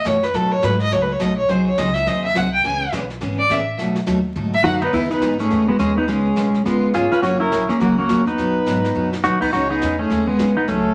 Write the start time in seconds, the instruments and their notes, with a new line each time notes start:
0.05 upright bass F#2, steel-string acoustic guitar B2 E3 A3 E4 F#4, fiddle C#5, snare, hi-hat pedal
0.23 fiddle B4, snare
0.33 upright bass B2, steel-string acoustic guitar B2 F#3 A3 D#4 F#4, fiddle A4, brush sweep, snare
0.51 fiddle C#5
0.62 upright bass G#2, steel-string acoustic guitar B2 F#3 A3 D#4 F#4, fiddle B4, snare, hi-hat pedal
0.80 fiddle D#5, snare
0.91 upright bass C#2, steel-string acoustic guitar B2 F#3 A3 D#4 F#4, fiddle C#5, brush sweep, snare
1.02 fiddle B4
1.12 fiddle C#5
1.19 upright bass B1, steel-string acoustic guitar B2 F#3 A3 D#4 F#4, fiddle D#5, snare, hi-hat pedal
1.37 fiddle C#5
1.49 upright bass C2, steel-string acoustic guitar C3 F#3 C4 D#4 G#4 C5, fiddle C5, brush sweep, snare
1.66 fiddle C#5
1.78 upright bass C#2, steel-string acoustic guitar C3 F#3 C4 D#4 G#4 C5, fiddle D#5, snare, hi-hat pedal
1.94 fiddle E5, snare
2.06 upright bass D#2, steel-string acoustic guitar C3 F#3 C4 D#4 G#4 C5, fiddle D#5, brush sweep, snare
2.24 fiddle E5
2.34 upright bass C2, steel-string acoustic guitar C3 F#3 C4 D#4 G#4 C5, fiddle F#5, snare, hi-hat pedal
2.54 fiddle G5
2.64 upright bass C#2, steel-string acoustic guitar C#3 E3 B3 C#4 G#4, fiddle G#5, brush sweep, snare
2.92 upright bass B1, steel-string acoustic guitar C#3 E3 B3 C#4 G#4, snare, hi-hat pedal
3.10 snare
3.21 upright bass G#1, steel-string acoustic guitar C#3 E3 B3 C#4 G#4, brush sweep, snare
3.38 fiddle D5
3.50 upright bass A1, steel-string acoustic guitar C#3 E3 B3 C#4 G#4, fiddle E5, snare, hi-hat pedal
3.78 upright bass B1, steel-string acoustic guitar B2 F#3 A3 D#4 F#4, brush sweep, snare
3.95 snare
4.06 upright bass D#2, steel-string acoustic guitar B2 F#3 A3 D#4 F#4, snare, hi-hat pedal
4.36 upright bass G#2, steel-string acoustic guitar B2 F#3 A3 D#4 F#4, mid tom
4.53 fiddle E5, mid tom
4.64 upright bass F#2, steel-string acoustic guitar B2 F#3 A3 D#4 F#4, pedal steel guitar D#4 F#4, fiddle F#5, hi-hat pedal, mid tom
4.82 pedal steel guitar B3 D#4, fiddle B4, mid tom
4.93 upright bass E2, steel-string acoustic guitar E3 G#3 B3 D#4 G#4, pedal steel guitar B3 E4, fiddle B4, brush sweep, kick, snare, crash
5.10 pedal steel guitar B3 D#4, fiddle B4, snare
5.22 upright bass G#2, steel-string acoustic guitar E3 G#3 B3 D#4 G#4, snare, hi-hat pedal
5.39 pedal steel guitar A3 C#4, fiddle G#4, snare
5.50 upright bass E2, steel-string acoustic guitar E3 G#3 B3 D#4 G#4, brush sweep, snare
5.68 pedal steel guitar G#3 B3, fiddle F#4
5.79 upright bass D#2, steel-string acoustic guitar E3 G#3 B3 D#4 G#4, pedal steel guitar G#3 C#4, fiddle G#4, snare, hi-hat pedal
5.96 pedal steel guitar B3 D#4, fiddle B4
6.07 upright bass C#2, steel-string acoustic guitar C#3 G#3 B3 F4 G#4, pedal steel guitar G#3 C#4, fiddle G#4, brush sweep, snare
6.36 upright bass B1, steel-string acoustic guitar C#3 G#3 B3 F4 G#4, snare, hi-hat pedal
6.54 snare
6.65 upright bass A1, steel-string acoustic guitar C#3 G#3 B3 F4 G#4, pedal steel guitar G#3 B3, fiddle F4, brush sweep, snare
6.83 muted upright bass stroke
6.94 upright bass G#1, steel-string acoustic guitar C#3 G#3 B3 F4 G#4, pedal steel guitar F4 G#4, fiddle C#5, snare, hi-hat pedal
7.11 pedal steel guitar C#4 F4, fiddle B4, muted upright bass stroke, snare
7.22 upright bass F#1, steel-string acoustic guitar C#3 F#3 A#3 C#4 F#4, pedal steel guitar C#4 F#4, fiddle C#5, brush sweep, snare
7.40 pedal steel guitar C#4 E4, fiddle A#4
7.52 upright bass A#1, steel-string acoustic guitar C#3 F#3 A#3 C#4 F#4, snare, hi-hat pedal
7.69 pedal steel guitar A#3 C#4, fiddle G#4, muted upright bass stroke, snare
7.80 upright bass C#2, steel-string acoustic guitar C#3 F#3 A#3 C#4 F#4, pedal steel guitar F#3 A#3, fiddle F#4, brush sweep, snare
7.98 pedal steel guitar A#3 C#4, fiddle F#4
8.09 upright bass E2, steel-string acoustic guitar C#3 F#3 A#3 C#4 F#4, snare, hi-hat pedal
8.27 pedal steel guitar B3 D#4, fiddle B4, snare
8.38 upright bass F#2, steel-string acoustic guitar B2 F#3 B3 D#4 F#4, brush sweep, snare
8.66 upright bass G#2, steel-string acoustic guitar B2 F#3 B3 D#4 F#4, snare, hi-hat pedal
8.85 snare
8.95 upright bass F#2, steel-string acoustic guitar B2 F#3 B3 D#4 F#4
9.13 snare
9.23 upright bass D#2, steel-string acoustic guitar B2 F#3 B3 D#4 F#4, pedal steel guitar D#4 F#4, fiddle B4, snare, hi-hat pedal
9.41 pedal steel guitar B3 D#4, fiddle B4, kick, crash
9.53 upright bass C#2, steel-string acoustic guitar C#3 G#3 C#4 D#4 G#4, pedal steel guitar D#4 F#4, fiddle C#5, brush sweep, snare
9.70 pedal steel guitar B3 D#4, fiddle G#4
9.81 upright bass E2, steel-string acoustic guitar C#3 G#3 C#4 D#4 G#4, snare, hi-hat pedal
9.99 pedal steel guitar A3 C#4, fiddle G#4
10.10 upright bass D#2, steel-string acoustic guitar C#3 G#3 C#4 D#4 G#4, brush sweep, snare
10.27 pedal steel guitar G#3 B3, fiddle G#4
10.39 upright bass B1, steel-string acoustic guitar C#3 G#3 C#4 D#4 G#4, snare, hi-hat pedal
10.57 pedal steel guitar B3 D#4, fiddle B4
10.68 upright bass C#2, steel-string acoustic guitar C#3 F#3 A3 C#4 G#4, pedal steel guitar A3 C#4, fiddle A4, brush sweep, snare